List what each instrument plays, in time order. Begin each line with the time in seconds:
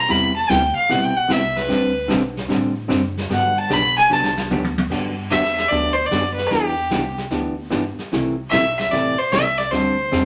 Already playing: fiddle A#5
0.08 upright bass E2, hollow-body jazz guitar C3 G3 B3 E4 G4, fiddle B5, brush sweep, snare
0.36 fiddle A5
0.49 upright bass D2, hollow-body jazz guitar C3 G3 B3 E4 G4, fiddle G5, snare, hi-hat pedal
0.75 fiddle F5, muted upright bass stroke
0.89 upright bass B1, hollow-body jazz guitar C3 G3 B3 E4 G4, fiddle F#5, brush sweep, snare
1.04 fiddle G5
1.16 fiddle F#5
1.28 upright bass C2, hollow-body jazz guitar C3 G3 B3 E4 G4, fiddle E5, snare, hi-hat pedal
1.57 fiddle B4, snare
1.68 upright bass D2, hollow-body jazz guitar D3 G3 C4 D4 G4, brush sweep, snare
2.08 upright bass B1, hollow-body jazz guitar D3 G3 C4 D4 G4, snare, hi-hat pedal
2.37 snare
2.48 upright bass A1, hollow-body jazz guitar D3 G3 C4 D4 G4, brush sweep, snare
2.88 upright bass F#1, hollow-body jazz guitar D3 G3 C4 D4 G4, snare, hi-hat pedal
3.17 snare
3.29 upright bass G1, hollow-body jazz guitar D3 F#3 B3 D4 G4, fiddle F#5, brush sweep, snare
3.58 fiddle A5
3.70 upright bass B1, hollow-body jazz guitar D3 F#3 B3 D4 G4, fiddle B5, snare, hi-hat pedal
3.98 fiddle G#5, snare
4.09 upright bass C2, hollow-body jazz guitar D3 F#3 B3 D4 G4, fiddle A5, snare
4.24 snare
4.37 snare
4.50 upright bass D2, hollow-body jazz guitar D3 F#3 B3 D4 G4, hi-hat pedal, high tom
4.64 high tom
4.78 high tom
4.90 upright bass G2, hollow-body jazz guitar D3 F#3 B3 D4 G4, brush sweep, kick, snare, crash
5.30 upright bass E2, hollow-body jazz guitar D3 F#3 B3 D4 G4, fiddle E5, snare, hi-hat pedal
5.45 snare
5.55 fiddle E5, snare
5.68 upright bass D2, hollow-body jazz guitar D3 F#3 B3, fiddle D5, brush sweep, snare
5.72 hollow-body jazz guitar D4 G4
5.93 fiddle C5
6.06 fiddle D5
6.11 upright bass F#2, hollow-body jazz guitar D3 F#3 B3 D4 G4, snare, hi-hat pedal
6.34 fiddle B4, snare
6.47 fiddle G4, brush sweep, snare
6.51 upright bass E2, hollow-body jazz guitar E3 B3 D4 G4
6.91 upright bass C2, hollow-body jazz guitar E3 B3 D4 G4, snare, hi-hat pedal
7.18 snare
7.31 upright bass D2, hollow-body jazz guitar E3 B3 D4 G4, brush sweep, snare
7.70 upright bass G1, hollow-body jazz guitar E3 B3 D4 G4, snare, hi-hat pedal
7.98 muted upright bass stroke, snare
8.12 upright bass C2, hollow-body jazz guitar C3 E3 A3 E4 G4, brush sweep, snare
8.50 upright bass B1, hollow-body jazz guitar C3 E3 A3 E4 G4, fiddle E5, snare, hi-hat pedal
8.79 fiddle E5, snare
8.91 upright bass A1, hollow-body jazz guitar C3 E3 A3 E4 G4, fiddle D5, brush sweep, snare
9.18 fiddle C5, muted upright bass stroke
9.31 upright bass C2, hollow-body jazz guitar C3 E3 A3 E4 G4, fiddle E5, snare, hi-hat pedal
9.58 fiddle D5, snare
9.71 upright bass D2, hollow-body jazz guitar D3 G3 C4 D4 G4, fiddle C5, brush sweep, snare
10.12 upright bass E2, hollow-body jazz guitar D3 G3 C4 D4 G4, snare, hi-hat pedal